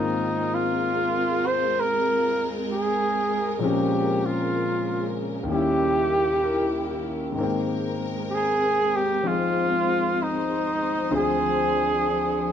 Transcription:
Already playing: G#2 D#3 G#3 A#3 C4 D#4 F4 A#4
0.54 F4
1.46 C5
1.80 A#4
2.73 G#4
3.59 A#2 C#3 F3 G#3 C4
3.64 C#4 G4
4.26 F4
5.43 D#2 D#3
5.48 D#3 G3 C#4 E4 G4
5.55 E4
6.43 A#4
6.91 G4
7.32 G#2 D#3 G#3 C4 A#4
7.39 A#3 C4
7.43 G5
8.31 G4 G#4
8.96 G4
9.22 F3 C4 D#4 G#4 C5
9.27 F4
10.23 D#4
11.10 D2 D3 F3 C4 D4 F4 G#4
11.16 G#4

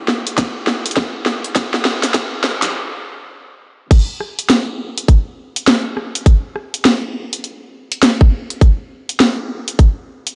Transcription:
0.08 snare
0.27 closed hi-hat
0.38 kick, snare, closed hi-hat
0.67 snare
0.86 closed hi-hat
0.91 closed hi-hat
0.97 kick, snare
1.26 snare
1.44 closed hi-hat
1.55 kick, snare, closed hi-hat
1.74 snare
1.85 snare
2.03 snare, closed hi-hat
2.14 kick, snare, closed hi-hat
2.44 snare
2.62 snare, closed hi-hat
3.91 kick, closed hi-hat, crash
4.20 cross-stick
4.39 closed hi-hat
4.50 snare, closed hi-hat
4.98 closed hi-hat
5.08 kick, closed hi-hat
5.56 closed hi-hat
5.67 snare, closed hi-hat
5.97 cross-stick
6.15 closed hi-hat
6.26 kick, closed hi-hat
6.56 cross-stick
6.74 closed hi-hat
6.85 snare, closed hi-hat
7.33 closed hi-hat
7.44 closed hi-hat
7.92 closed hi-hat
8.03 snare, closed hi-hat
8.21 kick
8.50 closed hi-hat
8.61 kick, closed hi-hat
9.09 closed hi-hat
9.20 snare, closed hi-hat
9.68 closed hi-hat
9.79 kick, closed hi-hat
10.27 closed hi-hat

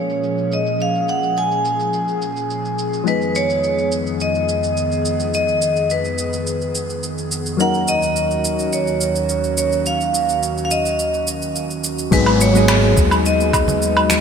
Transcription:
Already playing: A#2 F3 G#3 A#3 C#4 G#4 C#5
0.10 shaker
0.24 shaker
0.38 shaker
0.52 D#5, shaker
0.66 shaker
0.80 F5, shaker
0.95 shaker
1.08 F#5, shaker
1.23 shaker
1.37 G#5, shaker
1.51 shaker
1.65 shaker
1.80 shaker
1.93 shaker
2.08 shaker
2.22 shaker
2.37 shaker
2.50 shaker
2.65 shaker
2.79 shaker
2.93 shaker
3.04 F2 D#3 F3 G#3 B3 D#4, shaker
3.08 G#4 B4
3.22 shaker
3.35 C#5, shaker
3.50 shaker
3.64 shaker
3.78 shaker
3.92 shaker
4.07 shaker
4.20 D#5, shaker
4.35 shaker
4.49 shaker
4.63 shaker
4.77 shaker
4.92 shaker
5.05 shaker
5.20 shaker
5.34 D#5, shaker
5.48 shaker
5.62 shaker
5.76 shaker
5.90 B4, shaker
6.05 shaker
6.18 shaker
6.33 shaker
6.47 shaker
6.61 shaker
6.75 shaker
6.90 shaker
7.03 shaker
7.18 shaker
7.31 shaker
7.46 shaker
7.57 D#2 D#3 F#3 A#3 C#4 D#4 F#4 F#5, shaker
7.62 A#4
7.74 shaker
7.88 D#5, shaker
8.03 shaker
8.16 shaker
8.31 shaker
8.45 shaker
8.59 shaker
8.73 C#5, shaker
8.87 shaker
9.01 shaker
9.16 shaker
9.29 shaker
9.44 shaker
9.57 C#5, shaker
9.72 shaker
9.86 F5, shaker
10.01 shaker
10.14 shaker
10.29 shaker
10.43 shaker
10.58 shaker
10.65 F5
10.71 D#5, shaker
10.86 shaker
10.99 shaker
11.14 shaker
11.27 shaker
11.42 shaker
11.56 shaker
11.70 shaker
11.84 shaker
11.99 shaker
12.11 G#1 F#3 G#3 B3 D#4 F#4 G#4 B4, kick, downlifter, shaker
12.26 low woodblock
12.41 C#5, shaker
12.53 F#3 G#3 B3 D#4, shaker
12.57 G#4
12.68 finger snap, low woodblock, shaker
12.97 D#2, kick, shaker
13.11 high bongo, low woodblock, shaker
13.26 D#5, shaker
13.40 shaker
13.53 kick, low woodblock, shaker
13.68 low conga, shaker
13.82 shaker
13.97 low woodblock
14.10 finger snap, high bongo, high conga, shaker

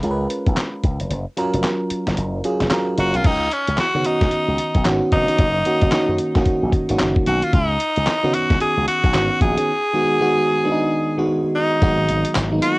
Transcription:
Already playing: G#3 C#4 F4 B4
0.03 C#2 G#3 C#4 F4 A#4, closed hi-hat
0.11 B4
0.30 closed hi-hat
0.46 B1, kick, closed hi-hat
0.57 snare, clap, closed hi-hat
0.84 C#2, kick, closed hi-hat
1.00 F1, closed hi-hat
1.10 F#1, closed hi-hat
1.37 F#3 C#4 F4 A#4, closed hi-hat
1.54 F1, closed hi-hat
1.64 snare, clap, closed hi-hat
1.90 muted slap bass stroke, closed hi-hat
2.07 F#1, snare, closed hi-hat
2.17 F#1, closed hi-hat
2.44 F#3 C#4 F4 G#4, closed hi-hat
2.60 F1, snare, closed hi-hat
2.71 F#3 C#4 F4 A#4, snare, clap, closed hi-hat
2.98 F#1 F#3 C#4 F4 F#4 A#4, closed hi-hat
3.14 B1 F4, closed hi-hat
3.24 C#2 D#4, kick, closed hi-hat, crash
3.51 C#4, closed hi-hat
3.67 C#2, closed hi-hat
3.78 F#4, muted slap bass stroke, snare, clap, closed hi-hat
3.94 C#3 D#3 B3 C#4 F#4
4.05 D#4, closed hi-hat
4.21 C#2, kick, snare, closed hi-hat
4.31 closed hi-hat
4.48 C#2
4.58 closed hi-hat
4.75 B1, kick, closed hi-hat
4.85 G#1 D#3 B3 C#4 F#4, snare, clap, closed hi-hat
5.12 F1 D#4, kick, closed hi-hat
5.28 D#3 B3 C#4 F#4, closed hi-hat
5.39 F#1, kick, closed hi-hat
5.65 D#3 A#3 C#4 F#4, closed hi-hat
5.82 F#1, kick, closed hi-hat
5.92 D#3 A#3 C#4 F#4, muted slap bass stroke, snare, clap, closed hi-hat
6.09 F#2
6.18 closed hi-hat
6.35 A#1 D#3 A#3 C#4 F#4, kick, snare, closed hi-hat
6.46 muted slap bass stroke, kick, closed hi-hat
6.63 A#1
6.72 kick, closed hi-hat
6.89 G#1 D#3 A#3 C#4 F#4, closed hi-hat
6.99 F#1, snare, clap, closed hi-hat
7.16 kick
7.26 B1 F#4, closed hi-hat
7.42 F4, closed hi-hat
7.53 C#2 D#4, kick, closed hi-hat
7.80 closed hi-hat
7.96 C#2, closed hi-hat
8.07 muted slap bass stroke, snare, clap, closed hi-hat
8.23 C#3 D#3 B3 C#4 F#4
8.34 F#4, closed hi-hat
8.50 C#2, kick, snare, closed hi-hat
8.61 G#4, closed hi-hat
8.77 C#2
8.88 F#4, closed hi-hat
9.04 B1, kick, closed hi-hat
9.13 G#1 D#3 B3 C#4 F#4, snare, clap, closed hi-hat
9.41 A#1 G#4, kick, closed hi-hat
9.57 D#3 B3 C#4 G#4, closed hi-hat
9.93 D#3 G#3 B3 F#4
10.21 D#3 G#3 B3 F#4
10.64 D#3 G#3 B3 D4
10.72 D#4
11.17 D#3 G#3 B3 F#4
11.55 D#4
11.82 G#1 D#3 F#3 G#3 B3 F#4, kick, closed hi-hat, tambourine
12.09 G#1, closed hi-hat
12.25 closed hi-hat
12.35 G#1, snare, clap, closed hi-hat, tambourine
12.51 D#3 F#3 G#3 A#3 D#4
12.58 B3, closed hi-hat, tambourine
12.62 F#4

